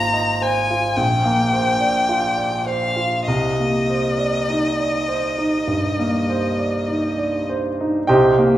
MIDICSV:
0, 0, Header, 1, 3, 480
1, 0, Start_track
1, 0, Key_signature, -3, "minor"
1, 0, Tempo, 1102941
1, 907, Tempo, 1197605
1, 1388, Time_signature, 4, 2, 24, 8
1, 3307, Tempo, 1134216
1, 3522, End_track
2, 0, Start_track
2, 0, Title_t, "Violin"
2, 0, Program_c, 0, 40
2, 0, Note_on_c, 0, 82, 74
2, 185, Note_on_c, 0, 80, 62
2, 191, Note_off_c, 0, 82, 0
2, 418, Note_on_c, 0, 79, 67
2, 424, Note_off_c, 0, 80, 0
2, 1143, Note_on_c, 0, 77, 62
2, 1149, Note_off_c, 0, 79, 0
2, 1383, Note_off_c, 0, 77, 0
2, 1386, Note_on_c, 0, 75, 59
2, 3055, Note_off_c, 0, 75, 0
2, 3522, End_track
3, 0, Start_track
3, 0, Title_t, "Grand piano"
3, 0, Program_c, 1, 0
3, 0, Control_c, 1, 64, 127
3, 0, Note_on_c, 1, 32, 44
3, 0, Note_on_c, 1, 58, 32
3, 0, Note_on_c, 1, 65, 37
3, 0, Note_on_c, 1, 72, 36
3, 0, Note_on_c, 1, 75, 35
3, 59, Note_off_c, 1, 75, 0
3, 59, Note_on_c, 1, 75, 38
3, 139, Note_off_c, 1, 65, 0
3, 181, Note_off_c, 1, 72, 0
3, 181, Note_on_c, 1, 72, 42
3, 254, Note_off_c, 1, 75, 0
3, 307, Note_on_c, 1, 65, 39
3, 374, Note_off_c, 1, 72, 0
3, 404, Note_off_c, 1, 32, 0
3, 422, Note_on_c, 1, 34, 51
3, 425, Note_off_c, 1, 65, 0
3, 432, Control_c, 1, 64, 0
3, 433, Note_off_c, 1, 58, 0
3, 510, Control_c, 1, 64, 127
3, 546, Note_on_c, 1, 58, 42
3, 667, Note_on_c, 1, 72, 42
3, 736, Note_off_c, 1, 58, 0
3, 784, Note_on_c, 1, 74, 35
3, 859, Note_off_c, 1, 72, 0
3, 908, Note_on_c, 1, 65, 36
3, 977, Note_off_c, 1, 74, 0
3, 1019, Note_on_c, 1, 74, 37
3, 1096, Note_off_c, 1, 65, 0
3, 1139, Note_on_c, 1, 72, 38
3, 1213, Note_off_c, 1, 74, 0
3, 1259, Note_on_c, 1, 65, 35
3, 1336, Note_off_c, 1, 72, 0
3, 1371, Note_off_c, 1, 34, 0
3, 1385, Note_off_c, 1, 65, 0
3, 1385, Note_on_c, 1, 36, 45
3, 1395, Control_c, 1, 64, 0
3, 1457, Control_c, 1, 64, 127
3, 1516, Note_on_c, 1, 58, 33
3, 1634, Note_on_c, 1, 72, 32
3, 1708, Note_off_c, 1, 58, 0
3, 1748, Note_on_c, 1, 74, 34
3, 1825, Note_off_c, 1, 72, 0
3, 1875, Note_on_c, 1, 63, 38
3, 1941, Note_off_c, 1, 74, 0
3, 1995, Note_on_c, 1, 74, 36
3, 2062, Note_off_c, 1, 63, 0
3, 2109, Note_on_c, 1, 72, 35
3, 2181, Note_off_c, 1, 74, 0
3, 2229, Note_on_c, 1, 63, 36
3, 2299, Note_off_c, 1, 72, 0
3, 2330, Note_off_c, 1, 36, 0
3, 2346, Note_on_c, 1, 43, 33
3, 2421, Note_off_c, 1, 63, 0
3, 2475, Note_on_c, 1, 58, 38
3, 2541, Note_off_c, 1, 43, 0
3, 2594, Note_on_c, 1, 72, 37
3, 2666, Note_off_c, 1, 58, 0
3, 2711, Note_on_c, 1, 74, 38
3, 2785, Note_off_c, 1, 72, 0
3, 2830, Note_on_c, 1, 63, 33
3, 2902, Note_off_c, 1, 74, 0
3, 2950, Note_on_c, 1, 74, 40
3, 3023, Note_off_c, 1, 63, 0
3, 3075, Note_on_c, 1, 72, 42
3, 3145, Note_off_c, 1, 74, 0
3, 3200, Note_on_c, 1, 63, 41
3, 3265, Note_off_c, 1, 72, 0
3, 3308, Note_on_c, 1, 79, 81
3, 3314, Note_off_c, 1, 63, 0
3, 3314, Note_on_c, 1, 75, 62
3, 3315, Note_on_c, 1, 36, 60
3, 3315, Note_on_c, 1, 72, 63
3, 3316, Note_on_c, 1, 67, 68
3, 3317, Control_c, 1, 64, 0
3, 3392, Control_c, 1, 64, 127
3, 3438, Note_on_c, 1, 58, 48
3, 3522, Note_off_c, 1, 36, 0
3, 3522, Note_off_c, 1, 58, 0
3, 3522, Note_off_c, 1, 67, 0
3, 3522, Note_off_c, 1, 72, 0
3, 3522, Note_off_c, 1, 75, 0
3, 3522, Note_off_c, 1, 79, 0
3, 3522, End_track
0, 0, End_of_file